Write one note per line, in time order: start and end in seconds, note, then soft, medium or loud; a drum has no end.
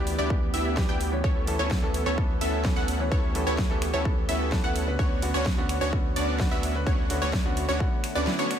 0.00 0.16 D2 medium
0.00 0.27 E3 loud
0.00 1.20 E3 medium
0.00 0.16 B3 medium
0.00 0.27 B3 medium
0.00 6.83 B3 medium
0.00 0.16 D4 medium
0.00 0.28 D4 medium
0.00 0.16 E4 medium
0.00 0.16 G4 medium
0.00 0.28 G4 loud
0.00 1.20 G4 medium
0.00 0.16 D5 loud
0.07 open hi-hat loud
0.18 0.51 D2 loud
0.18 0.33 B3 medium
0.18 0.33 D4 medium
0.18 0.33 E4 medium
0.18 0.33 G4 medium
0.18 0.33 D5 medium
0.30 0.74 E3 medium
0.30 0.74 B3 medium
0.30 0.74 D4 medium
0.30 0.75 G4 medium
0.30 kick loud
0.54 0.87 D2 medium
0.54 0.78 B3 medium
0.54 0.78 D4 medium
0.54 0.78 E4 medium
0.54 0.78 G4 medium
0.54 0.78 E5 medium
0.54 0.78 E5 loud
0.54 open hi-hat loud
0.77 0.96 E3 loud
0.77 0.96 B3 medium
0.77 0.96 D4 medium
0.77 0.96 G4 loud
0.77 kick loud
0.77 snare loud
0.89 1.22 D2 loud
0.89 1.13 B3 medium
0.89 1.13 D4 medium
0.89 1.13 E4 medium
0.89 1.13 G4 medium
0.89 1.13 G5 medium
1.01 open hi-hat loud
1.12 1.44 E3 medium
1.12 1.45 B3 medium
1.12 1.45 C#4 medium
1.12 1.45 C#5 medium
1.24 1.57 D2 loud
1.24 1.56 B3 medium
1.24 1.56 C#4 medium
1.24 1.56 E4 medium
1.24 1.56 A4 medium
1.24 3.10 A4 medium
1.24 1.56 C#5 medium
1.24 1.56 C#5 loud
1.24 kick loud
1.47 1.59 E3 medium
1.47 1.59 B3 medium
1.47 1.59 C#4 medium
1.47 1.60 A4 loud
1.47 open hi-hat loud
1.47 ride medium
1.59 2.04 D2 medium
1.59 2.03 B3 medium
1.59 2.03 C#4 medium
1.59 2.03 E4 medium
1.59 2.03 A4 medium
1.59 2.03 C#5 loud
1.71 kick loud
1.71 snare loud
1.82 2.15 E3 loud
1.82 2.15 B3 medium
1.82 2.15 C#4 medium
1.82 2.15 A4 loud
1.94 open hi-hat medium
1.94 ride medium
2.06 2.39 D2 medium
2.06 2.21 B3 medium
2.06 2.21 C#4 medium
2.06 2.21 E4 medium
2.06 2.21 A4 medium
2.06 2.21 C#5 loud
2.06 2.21 C#5 medium
2.17 2.62 E3 medium
2.17 2.62 B3 medium
2.17 2.62 C#4 medium
2.17 2.62 A4 medium
2.17 kick loud
2.41 2.74 D2 loud
2.41 2.65 B3 medium
2.41 2.65 C#4 medium
2.41 2.65 E4 medium
2.41 2.65 A4 medium
2.41 2.65 E5 medium
2.41 open hi-hat loud
2.41 ride medium
2.64 2.83 E3 medium
2.64 2.83 B3 medium
2.64 2.84 C#4 medium
2.64 2.84 A4 loud
2.64 kick loud
2.64 snare loud
2.76 3.09 D2 loud
2.76 3.00 B3 medium
2.76 3.00 C#4 medium
2.76 3.00 E4 medium
2.76 3.00 A4 medium
2.76 3.00 F#5 medium
2.76 snare soft
2.88 open hi-hat medium
2.88 ride medium
2.99 3.32 E3 medium
2.99 3.32 B3 medium
2.99 3.32 C#4 medium
2.99 3.33 C#5 medium
3.12 3.44 D2 loud
3.12 3.44 B3 medium
3.12 3.44 C#4 medium
3.12 3.44 E4 medium
3.12 4.97 G4 medium
3.12 3.44 A4 medium
3.12 3.44 C#5 loud
3.12 3.44 C#5 medium
3.12 kick loud
3.34 3.47 E3 medium
3.34 3.47 B3 medium
3.34 3.47 C#4 medium
3.34 3.47 A4 loud
3.34 open hi-hat loud
3.34 ride medium
3.47 3.91 D2 loud
3.47 3.91 B3 medium
3.47 3.91 C#4 medium
3.47 3.91 E4 medium
3.47 3.91 A4 medium
3.47 3.91 C#5 medium
3.47 3.91 C#5 loud
3.58 kick loud
3.58 snare loud
3.70 4.02 E3 loud
3.70 4.02 B3 medium
3.70 4.03 C#4 medium
3.70 4.03 A4 loud
3.82 finger snap medium
3.82 open hi-hat medium
3.82 ride medium
3.94 4.26 D2 medium
3.94 4.09 B3 medium
3.94 4.09 C#4 medium
3.94 4.09 E4 medium
3.94 4.09 A4 medium
3.94 4.09 C#5 medium
4.05 4.49 E3 medium
4.05 4.49 B3 medium
4.05 4.49 C#4 medium
4.05 4.50 A4 medium
4.05 kick loud
4.29 4.62 D2 loud
4.29 4.53 B3 medium
4.29 4.53 C#4 medium
4.29 4.53 E4 medium
4.29 4.53 A4 medium
4.29 4.53 E5 loud
4.29 4.53 E5 medium
4.29 open hi-hat loud
4.29 ride medium
4.52 4.71 E3 loud
4.52 4.71 B3 medium
4.52 4.71 C#4 medium
4.52 4.71 A4 loud
4.52 kick loud
4.52 snare loud
4.64 4.97 D2 loud
4.64 4.88 B3 medium
4.64 4.88 C#4 medium
4.64 4.88 E4 medium
4.64 4.88 A4 medium
4.64 4.88 F#5 loud
4.76 open hi-hat medium
4.76 ride medium
4.87 5.19 D3 medium
4.87 5.20 B3 medium
4.87 5.20 C#4 medium
4.87 5.20 B4 loud
4.99 5.32 D2 loud
4.99 5.31 B3 medium
4.99 5.31 C#4 medium
4.99 5.31 D4 medium
4.99 5.31 F#4 medium
4.99 5.31 C#5 loud
4.99 5.31 C#5 medium
4.99 kick loud
5.22 5.34 D3 medium
5.22 5.34 B3 medium
5.22 5.34 C#4 medium
5.22 5.35 F#4 loud
5.22 open hi-hat loud
5.22 ride medium
5.34 5.79 D2 loud
5.34 5.78 B3 medium
5.34 5.78 C#4 medium
5.34 5.78 D4 medium
5.34 5.78 F#4 medium
5.34 5.78 C#5 loud
5.46 kick loud
5.46 snare loud
5.57 5.90 D3 loud
5.57 5.90 B3 loud
5.57 5.90 C#4 loud
5.57 5.90 F#4 loud
5.69 finger snap medium
5.69 open hi-hat medium
5.69 ride medium
5.81 6.14 D2 loud
5.81 5.96 B3 medium
5.81 5.96 C#4 medium
5.81 5.96 D4 medium
5.81 5.96 F#4 medium
5.81 5.96 C#5 medium
5.92 6.37 D3 medium
5.92 6.37 B3 medium
5.92 6.37 C#4 medium
5.92 6.37 F#4 medium
5.92 kick loud
6.16 6.49 D2 loud
6.16 6.40 B3 medium
6.16 6.40 C#4 medium
6.16 6.40 D4 medium
6.16 6.40 F#4 medium
6.16 6.40 D5 loud
6.16 open hi-hat loud
6.16 ride medium
6.39 6.58 D3 medium
6.39 6.58 B3 medium
6.39 6.59 C#4 medium
6.39 6.59 F#4 loud
6.39 kick loud
6.39 snare loud
6.51 6.84 D2 medium
6.51 6.75 B3 medium
6.51 6.75 C#4 medium
6.51 6.75 D4 medium
6.51 6.75 F#4 medium
6.51 6.75 E5 medium
6.51 6.75 E5 loud
6.51 snare soft
6.63 open hi-hat medium
6.63 ride medium
6.74 7.07 D3 medium
6.74 7.07 B3 medium
6.74 7.07 C#4 medium
6.74 7.07 B4 loud
6.87 7.19 D2 loud
6.87 8.59 A3 medium
6.87 7.19 B3 medium
6.87 7.19 C#4 medium
6.87 7.19 D4 medium
6.87 7.19 F#4 medium
6.87 7.19 C#5 loud
6.87 kick loud
7.10 7.22 D3 loud
7.10 7.22 B3 medium
7.10 7.22 C#4 medium
7.10 7.22 F#4 loud
7.10 open hi-hat loud
7.10 ride medium
7.22 7.66 D2 loud
7.22 7.66 B3 medium
7.22 7.66 C#4 medium
7.22 7.66 D4 medium
7.22 7.66 F#4 medium
7.22 7.66 C#5 medium
7.22 7.66 C#5 loud
7.33 kick loud
7.33 snare loud
7.45 7.77 D3 loud
7.45 7.77 B3 medium
7.45 7.78 C#4 medium
7.45 7.78 F#4 loud
7.57 open hi-hat medium
7.57 ride medium
7.69 7.81 D2 loud
7.69 7.84 B3 medium
7.69 7.84 C#4 medium
7.69 7.84 D4 medium
7.69 7.84 F#4 medium
7.69 7.84 C#5 medium
7.80 8.24 D3 medium
7.80 8.24 B3 medium
7.80 8.25 C#4 medium
7.80 8.25 F#4 loud
7.80 kick loud
8.04 finger snap medium
8.04 open hi-hat loud
8.04 ride medium
8.15 8.27 D2 loud
8.15 8.35 B3 medium
8.15 8.35 C#4 medium
8.15 8.35 D4 medium
8.15 8.35 F#4 medium
8.15 8.35 D5 medium
8.27 8.39 D3 medium
8.27 8.39 B3 medium
8.27 8.39 C#4 medium
8.27 8.39 E4 medium
8.27 snare loud
8.39 8.59 B3 medium
8.39 8.59 C#4 medium
8.39 8.59 D4 medium
8.39 8.59 F#4 medium
8.39 8.59 C#5 loud
8.51 finger snap medium
8.51 open hi-hat medium
8.51 ride medium